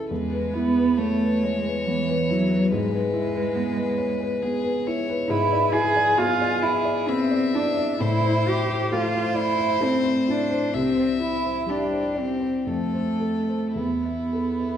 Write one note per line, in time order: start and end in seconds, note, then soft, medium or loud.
0.00 0.13 C#4 soft
0.00 0.12 E4 medium
0.00 0.13 A4 medium
0.00 0.13 B4 soft
0.10 2.69 E2 medium
0.10 0.55 G#3 medium
0.10 0.99 B4 medium
0.33 0.68 B4 medium
0.54 0.99 B3 loud
0.54 0.90 E4 medium
0.77 1.13 B4 medium
0.97 1.45 A3 medium
0.97 1.35 B3 medium
0.97 2.71 C#5 medium
1.22 1.58 B4 medium
1.44 1.89 G#3 medium
1.44 1.66 C#5 medium
1.66 2.01 B4 medium
1.87 2.31 E3 medium
1.87 2.22 B3 medium
2.08 2.43 B4 medium
2.30 2.72 F#3 loud
2.30 2.64 E4 medium
2.51 2.72 B4 medium
2.71 5.26 G#2 medium
2.71 4.82 G#3 loud
2.71 4.44 B4 medium
2.92 3.27 B4 medium
3.13 3.48 E4 medium
3.34 3.69 B4 medium
3.55 3.90 B3 medium
3.77 4.12 B4 medium
3.98 4.20 C#5 medium
4.21 4.55 B4 medium
4.42 4.77 B3 medium
4.42 4.89 G#4 medium
4.64 4.99 B4 medium
4.87 5.22 E4 medium
4.87 5.32 C#5 medium
5.10 5.31 B4 medium
5.29 7.97 G#2 medium
5.29 5.74 E4 loud
5.29 6.19 B4 medium
5.52 5.88 D5 medium
5.72 6.10 E4 medium
5.72 6.20 G#4 loud
5.96 6.33 D5 medium
6.18 6.55 B3 medium
6.18 6.64 F4 loud
6.18 7.10 G#4 medium
6.41 6.78 D5 medium
6.63 7.10 E4 medium
6.63 6.87 E5 medium
6.85 7.22 D5 medium
7.08 7.46 B3 medium
7.08 7.56 C4 loud
7.08 8.03 E5 medium
7.31 7.69 D5 medium
7.54 8.01 D4 medium
7.54 7.92 E4 medium
7.77 8.01 D5 medium
8.00 10.71 A2 medium
8.00 8.50 E4 loud
8.00 8.91 C5 medium
8.23 8.60 C5 medium
8.46 8.83 E4 medium
8.46 8.94 G4 loud
8.68 9.05 C5 medium
8.92 9.28 A3 medium
8.92 9.39 F4 medium
8.92 10.75 C5 loud
9.13 9.50 C5 medium
9.35 9.85 E4 loud
9.35 9.59 D5 medium
9.58 9.96 C5 medium
9.81 10.18 A3 medium
9.81 10.32 C4 medium
10.04 10.42 C5 medium
10.28 10.76 D4 medium
10.28 10.65 E4 medium
10.51 10.75 C5 medium
10.74 12.63 C2 medium
10.74 11.70 E5 medium
10.78 11.23 C4 medium
10.97 11.35 C5 medium
11.20 11.58 E4 medium
11.24 11.71 E4 medium
11.43 11.82 C5 soft
11.66 12.06 G3 medium
11.66 12.21 D4 medium
11.66 12.69 G4 medium
11.91 12.31 C5 soft
12.15 12.41 D5 soft
12.19 12.69 C4 medium
12.40 12.67 C5 soft
12.66 13.74 F2 medium
12.66 13.79 A3 medium
12.66 13.77 A4 medium
12.93 13.37 C5 soft
13.20 13.65 A4 soft
13.48 13.77 C5 soft
13.75 14.77 E2 soft
13.75 14.77 B3 medium
13.75 14.77 E4 medium
14.06 14.50 E5 soft
14.33 14.77 A4 soft
14.60 14.77 E5 soft